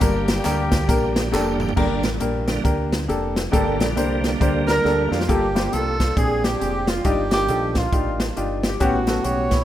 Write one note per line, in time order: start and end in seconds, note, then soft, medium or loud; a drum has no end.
0.00 0.39 G1 loud
0.00 0.68 G2 medium
0.00 1.74 D3 medium
0.00 1.73 G3 medium
0.00 1.30 A#3 medium
0.00 0.30 A#3 medium
0.00 1.74 A#3 soft
0.00 1.30 D4 medium
0.00 0.31 D4 medium
0.00 1.33 G4 loud
0.00 1.73 G4 medium
0.00 0.31 G4 medium
0.00 0.31 A#4 medium
0.00 kick loud
0.00 closed hi-hat loud
0.00 tambourine medium
0.28 snare loud
0.28 closed hi-hat medium
0.28 tambourine medium
0.44 0.90 D2 medium
0.44 0.74 A#3 medium
0.44 0.75 D4 medium
0.44 0.75 G4 medium
0.44 0.75 A#4 loud
0.44 clap medium
0.44 closed hi-hat medium
0.44 tambourine medium
0.72 kick medium
0.72 snare medium
0.72 closed hi-hat medium
0.72 tambourine soft
0.88 1.35 A#1 loud
0.88 1.18 A#3 medium
0.88 1.18 D4 medium
0.88 1.19 G4 medium
0.88 1.19 A#4 medium
0.88 kick loud
0.88 closed hi-hat medium
0.88 tambourine medium
1.16 snare loud
1.16 closed hi-hat medium
1.16 tambourine soft
1.32 1.71 F1 medium
1.32 1.62 A#3 medium
1.32 1.62 D4 medium
1.32 1.62 G4 medium
1.32 1.63 A4 loud
1.32 snare medium
1.32 clap loud
1.32 tambourine loud
1.60 mid tom medium
1.60 tambourine medium
1.69 floor tom medium
1.76 2.04 G1 loud
1.76 2.44 G2 medium
1.76 2.09 D3 soft
1.76 2.09 G3 soft
1.76 2.06 A#3 medium
1.76 2.09 A#3 soft
1.76 2.07 D4 medium
1.76 2.07 G4 medium
1.76 2.07 A#4 loud
1.76 kick medium
1.76 crash medium
2.03 2.19 A1 medium
2.03 snare medium
2.03 closed hi-hat medium
2.20 2.58 A#1 medium
2.20 2.50 A#3 medium
2.20 2.50 D4 medium
2.20 2.51 G4 medium
2.20 2.51 A#4 medium
2.20 closed hi-hat medium
2.48 2.63 D3 medium
2.48 2.64 G3 soft
2.48 2.63 A#3 medium
2.48 snare medium
2.48 closed hi-hat medium
2.64 3.11 D2 medium
2.64 2.94 A#3 medium
2.64 2.94 D4 medium
2.64 2.94 G4 medium
2.64 2.95 A#4 medium
2.64 kick loud
2.64 closed hi-hat medium
2.92 snare medium
2.92 closed hi-hat medium
3.08 3.47 F1 medium
3.08 3.38 A#3 medium
3.08 3.38 D4 medium
3.08 3.39 G4 medium
3.08 3.39 A4 medium
3.08 closed hi-hat medium
3.36 snare loud
3.36 closed hi-hat medium
3.51 3.81 G1 loud
3.51 4.20 G2 medium
3.51 5.24 D3 soft
3.51 5.24 G3 soft
3.51 3.82 A#3 medium
3.51 5.25 A#3 medium
3.51 3.82 D4 medium
3.51 3.82 G4 medium
3.51 3.83 A4 loud
3.51 kick loud
3.51 closed hi-hat loud
3.80 3.95 A#1 medium
3.80 snare loud
3.80 closed hi-hat medium
3.96 4.34 C2 medium
3.96 4.26 A#3 medium
3.96 4.26 D4 medium
3.96 4.27 G4 medium
3.96 4.27 C5 medium
3.96 closed hi-hat medium
4.24 snare medium
4.24 closed hi-hat medium
4.40 4.79 D2 medium
4.40 4.70 A#3 medium
4.40 4.70 D4 medium
4.40 4.71 G4 medium
4.40 4.71 C5 medium
4.40 kick loud
4.40 closed hi-hat medium
4.67 5.25 D4 medium
4.67 5.25 G4 medium
4.67 5.14 A#4 medium
4.67 5.09 A#4 medium
4.67 snare loud
4.67 closed hi-hat medium
4.84 5.08 D2 medium
4.84 5.14 A#3 medium
4.84 5.15 D4 medium
4.84 5.15 G4 medium
4.84 5.15 A4 medium
4.84 snare medium
5.11 5.26 F2 medium
5.11 5.28 F4 medium
5.11 5.31 F4 medium
5.11 snare medium
5.21 snare medium
5.28 5.67 G1 loud
5.28 5.95 G2 medium
5.28 5.44 A#3 loud
5.28 6.13 A#3 medium
5.28 5.73 D4 medium
5.28 5.44 F4 medium
5.28 5.73 G4 medium
5.28 5.45 G4 medium
5.28 5.75 G4 medium
5.28 5.45 A4 medium
5.28 kick loud
5.28 closed hi-hat medium
5.55 5.65 A#3 medium
5.55 5.66 F4 medium
5.55 5.66 G4 medium
5.55 5.66 C5 medium
5.55 snare loud
5.55 closed hi-hat medium
5.72 6.11 C2 medium
5.72 6.02 A#3 medium
5.72 6.14 D4 medium
5.72 6.02 F4 medium
5.72 6.14 F4 medium
5.72 6.02 G4 medium
5.72 6.03 A4 medium
5.72 6.14 A4 medium
5.72 6.17 A4 medium
5.72 closed hi-hat medium
6.00 kick medium
6.00 snare medium
6.00 closed hi-hat medium
6.16 6.54 A#1 medium
6.16 6.83 A#2 medium
6.16 6.46 C4 medium
6.16 6.43 C4 medium
6.16 6.46 D4 medium
6.16 6.43 D4 medium
6.16 6.47 G4 medium
6.16 6.47 G#4 medium
6.16 6.44 G#4 medium
6.16 6.47 G#4 medium
6.16 kick loud
6.16 closed hi-hat medium
6.44 7.01 C4 medium
6.44 7.01 D4 medium
6.44 6.88 G4 medium
6.44 6.90 G4 medium
6.44 snare medium
6.44 closed hi-hat medium
6.60 6.99 F1 medium
6.60 6.90 C4 medium
6.60 6.90 D4 medium
6.60 6.90 G4 medium
6.60 6.91 G#4 medium
6.60 closed hi-hat medium
6.87 7.05 F4 medium
6.87 7.07 F4 medium
6.87 snare loud
6.87 closed hi-hat medium
7.04 7.49 G1 loud
7.04 7.72 G2 medium
7.04 7.30 A#3 medium
7.04 7.30 D4 medium
7.04 7.20 D4 medium
7.04 7.21 D#4 medium
7.04 7.21 F4 medium
7.04 7.30 G4 medium
7.04 7.21 G4 loud
7.04 7.32 G4 medium
7.04 kick loud
7.04 closed hi-hat medium
7.31 7.74 A#3 medium
7.31 7.74 D4 medium
7.31 7.42 D4 medium
7.31 7.42 D#4 medium
7.31 7.42 F4 medium
7.31 7.72 G4 medium
7.31 7.80 G4 loud
7.31 7.42 A#4 medium
7.31 snare loud
7.31 closed hi-hat medium
7.48 7.87 A#1 medium
7.48 7.78 D4 medium
7.48 7.78 D#4 medium
7.48 7.79 F4 medium
7.48 7.79 A4 medium
7.48 closed hi-hat medium
7.75 8.60 A#3 medium
7.75 8.59 D4 medium
7.75 8.20 F4 medium
7.75 8.21 F4 medium
7.75 kick medium
7.75 snare medium
7.75 closed hi-hat medium
7.93 8.30 A1 medium
7.93 8.22 D4 medium
7.93 8.23 D#4 medium
7.93 8.23 F4 medium
7.93 8.23 G4 medium
7.93 kick loud
7.93 closed hi-hat medium
8.20 snare loud
8.20 closed hi-hat medium
8.36 8.75 G1 medium
8.36 8.66 D4 medium
8.36 8.66 D#4 medium
8.36 8.67 F4 medium
8.36 8.67 G4 medium
8.36 closed hi-hat medium
8.63 8.80 G4 medium
8.63 snare loud
8.63 closed hi-hat medium
8.80 9.18 A1 loud
8.80 9.47 A2 medium
8.80 8.96 B3 medium
8.80 9.64 B3 medium
8.80 8.96 C#4 medium
8.80 9.64 C#4 medium
8.80 8.96 F#4 medium
8.80 9.52 F#4 medium
8.80 9.26 F#4 medium
8.80 8.97 G4 loud
8.80 kick loud
8.80 closed hi-hat medium
9.07 9.18 B3 medium
9.07 9.18 C#4 medium
9.07 9.18 F#4 medium
9.07 9.18 A4 medium
9.07 snare medium
9.07 closed hi-hat medium
9.24 9.62 B1 medium
9.24 9.54 B3 medium
9.24 9.55 C#4 medium
9.24 9.55 F#4 medium
9.24 9.55 G4 medium
9.24 9.64 C#5 medium
9.24 closed hi-hat medium
9.51 9.64 E4 medium
9.51 kick medium
9.51 snare medium
9.51 closed hi-hat medium